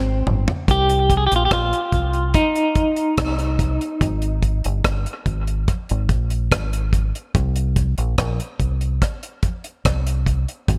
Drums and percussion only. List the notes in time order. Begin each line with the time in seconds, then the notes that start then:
0.27 mid tom
0.48 floor tom
0.68 kick, closed hi-hat
0.89 closed hi-hat
1.10 kick, closed hi-hat
1.32 closed hi-hat
1.51 kick, cross-stick, closed hi-hat
1.73 closed hi-hat
1.92 kick, closed hi-hat
2.13 closed hi-hat
2.34 kick, closed hi-hat
2.55 closed hi-hat
2.75 kick, closed hi-hat
2.96 closed hi-hat
3.18 kick, cross-stick, closed hi-hat
3.39 closed hi-hat
3.59 kick, closed hi-hat
3.81 closed hi-hat
4.01 kick, closed hi-hat
4.22 closed hi-hat
4.43 kick, closed hi-hat
4.64 closed hi-hat
4.84 kick, cross-stick, closed hi-hat
5.06 closed hi-hat
5.26 kick, closed hi-hat
5.47 closed hi-hat
5.68 kick, closed hi-hat
5.89 closed hi-hat
6.09 kick, closed hi-hat
6.30 closed hi-hat
6.52 kick, cross-stick, closed hi-hat
6.73 closed hi-hat
6.93 kick, closed hi-hat
7.15 closed hi-hat
7.35 kick, closed hi-hat
7.56 closed hi-hat
7.76 kick, closed hi-hat
7.98 closed hi-hat
8.18 kick, cross-stick, closed hi-hat
8.40 closed hi-hat
8.60 kick, closed hi-hat
8.81 closed hi-hat
9.02 kick, cross-stick, closed hi-hat
9.23 closed hi-hat
9.43 kick, closed hi-hat
9.64 closed hi-hat
9.85 kick, cross-stick, closed hi-hat
10.07 closed hi-hat
10.26 kick, closed hi-hat
10.48 closed hi-hat
10.68 kick, closed hi-hat